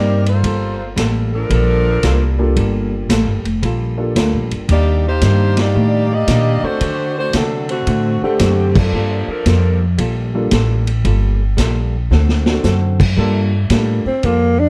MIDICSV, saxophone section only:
0, 0, Header, 1, 2, 480
1, 0, Start_track
1, 0, Key_signature, -2, "minor"
1, 0, Tempo, 530504
1, 397, Time_signature, 4, 2, 24, 8
1, 13292, End_track
2, 0, Start_track
2, 0, Title_t, "Saxophone section"
2, 0, Program_c, 0, 65
2, 0, Note_on_c, 0, 60, 75
2, 0, Note_on_c, 0, 67, 83
2, 0, Note_on_c, 0, 70, 79
2, 0, Note_on_c, 0, 74, 89
2, 245, Note_off_c, 0, 74, 0
2, 246, Note_off_c, 0, 67, 0
2, 248, Note_off_c, 0, 70, 0
2, 248, Note_on_c, 0, 69, 70
2, 249, Note_off_c, 0, 60, 0
2, 252, Note_on_c, 0, 72, 81
2, 254, Note_on_c, 0, 65, 66
2, 255, Note_on_c, 0, 58, 73
2, 843, Note_off_c, 0, 69, 0
2, 845, Note_off_c, 0, 72, 0
2, 846, Note_off_c, 0, 65, 0
2, 847, Note_off_c, 0, 58, 0
2, 1208, Note_on_c, 0, 70, 109
2, 1210, Note_on_c, 0, 53, 87
2, 1213, Note_on_c, 0, 69, 91
2, 1219, Note_on_c, 0, 62, 95
2, 2127, Note_off_c, 0, 70, 0
2, 2129, Note_off_c, 0, 53, 0
2, 2130, Note_off_c, 0, 69, 0
2, 2133, Note_off_c, 0, 62, 0
2, 4262, Note_on_c, 0, 67, 89
2, 4264, Note_on_c, 0, 74, 96
2, 4269, Note_on_c, 0, 58, 83
2, 4271, Note_on_c, 0, 63, 89
2, 4550, Note_off_c, 0, 67, 0
2, 4551, Note_off_c, 0, 74, 0
2, 4554, Note_off_c, 0, 58, 0
2, 4555, Note_off_c, 0, 63, 0
2, 4594, Note_on_c, 0, 67, 78
2, 4598, Note_on_c, 0, 72, 90
2, 4601, Note_on_c, 0, 58, 79
2, 4605, Note_on_c, 0, 63, 78
2, 5055, Note_off_c, 0, 58, 0
2, 5055, Note_off_c, 0, 67, 0
2, 5058, Note_off_c, 0, 63, 0
2, 5059, Note_off_c, 0, 72, 0
2, 5064, Note_on_c, 0, 74, 103
2, 5066, Note_on_c, 0, 58, 85
2, 5066, Note_on_c, 0, 67, 88
2, 5069, Note_on_c, 0, 63, 86
2, 5532, Note_off_c, 0, 74, 0
2, 5533, Note_off_c, 0, 58, 0
2, 5533, Note_off_c, 0, 67, 0
2, 5534, Note_off_c, 0, 63, 0
2, 5553, Note_on_c, 0, 58, 80
2, 5554, Note_on_c, 0, 67, 91
2, 5557, Note_on_c, 0, 75, 104
2, 5559, Note_on_c, 0, 74, 91
2, 6011, Note_on_c, 0, 57, 89
2, 6012, Note_on_c, 0, 66, 82
2, 6014, Note_on_c, 0, 72, 97
2, 6016, Note_off_c, 0, 58, 0
2, 6016, Note_on_c, 0, 62, 83
2, 6017, Note_off_c, 0, 67, 0
2, 6019, Note_off_c, 0, 74, 0
2, 6019, Note_off_c, 0, 75, 0
2, 6485, Note_off_c, 0, 62, 0
2, 6486, Note_off_c, 0, 57, 0
2, 6486, Note_off_c, 0, 66, 0
2, 6487, Note_off_c, 0, 72, 0
2, 6496, Note_on_c, 0, 57, 75
2, 6496, Note_on_c, 0, 62, 78
2, 6497, Note_on_c, 0, 72, 93
2, 6499, Note_on_c, 0, 66, 76
2, 6636, Note_off_c, 0, 57, 0
2, 6636, Note_off_c, 0, 62, 0
2, 6636, Note_off_c, 0, 72, 0
2, 6637, Note_off_c, 0, 66, 0
2, 6660, Note_on_c, 0, 69, 85
2, 6664, Note_on_c, 0, 54, 71
2, 6664, Note_on_c, 0, 60, 76
2, 6664, Note_on_c, 0, 62, 70
2, 6960, Note_off_c, 0, 60, 0
2, 6970, Note_on_c, 0, 57, 74
2, 6971, Note_off_c, 0, 69, 0
2, 6971, Note_on_c, 0, 60, 77
2, 6972, Note_on_c, 0, 50, 77
2, 6973, Note_off_c, 0, 54, 0
2, 6973, Note_off_c, 0, 62, 0
2, 6977, Note_on_c, 0, 66, 86
2, 7412, Note_off_c, 0, 57, 0
2, 7413, Note_off_c, 0, 50, 0
2, 7413, Note_off_c, 0, 60, 0
2, 7415, Note_off_c, 0, 66, 0
2, 7453, Note_on_c, 0, 50, 74
2, 7455, Note_on_c, 0, 57, 80
2, 7455, Note_on_c, 0, 67, 87
2, 7457, Note_on_c, 0, 60, 76
2, 7927, Note_off_c, 0, 50, 0
2, 7928, Note_off_c, 0, 57, 0
2, 7928, Note_off_c, 0, 67, 0
2, 7929, Note_off_c, 0, 60, 0
2, 7935, Note_on_c, 0, 69, 92
2, 7937, Note_on_c, 0, 53, 74
2, 7940, Note_on_c, 0, 58, 77
2, 7940, Note_on_c, 0, 62, 80
2, 8404, Note_off_c, 0, 62, 0
2, 8408, Note_off_c, 0, 69, 0
2, 8409, Note_off_c, 0, 53, 0
2, 8410, Note_off_c, 0, 58, 0
2, 8415, Note_on_c, 0, 62, 69
2, 8419, Note_on_c, 0, 53, 68
2, 8419, Note_on_c, 0, 69, 76
2, 8419, Note_on_c, 0, 70, 79
2, 8888, Note_off_c, 0, 62, 0
2, 8890, Note_off_c, 0, 53, 0
2, 8890, Note_off_c, 0, 69, 0
2, 8890, Note_off_c, 0, 70, 0
2, 13292, End_track
0, 0, End_of_file